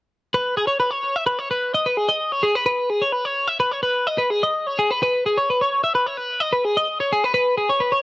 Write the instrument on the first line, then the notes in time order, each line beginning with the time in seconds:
clean electric guitar
0.34 B4
0.57 G#4
0.67 C#5
0.80 B4
0.91 C#5
1.16 E5
1.27 B4
1.39 C#5
1.51 B4
1.74 D#5
1.86 B4
1.97 G#4
2.09 D#5
2.32 C#5
2.43 G#4
2.56 B4
2.66 B4
2.90 G#4
3.02 C#5
3.12 B4
3.25 C#5
3.48 E5
3.60 B4
3.72 C#5
3.83 B4
4.07 D#5
4.18 B4
4.30 G#4
4.43 D#5
4.67 C#5
4.79 G#4
4.91 B4
5.03 B4
5.26 G#4
5.38 C#5
5.50 B4
5.61 C#5
5.84 E5
5.95 B4
6.07 C#5
6.18 B4
6.40 D#5
6.53 B4
6.65 G#4
6.77 D#5
7.00 C#5
7.13 G#4
7.24 B4
7.34 B4
7.58 G#4
7.70 C#5
7.80 B4
7.92 C#5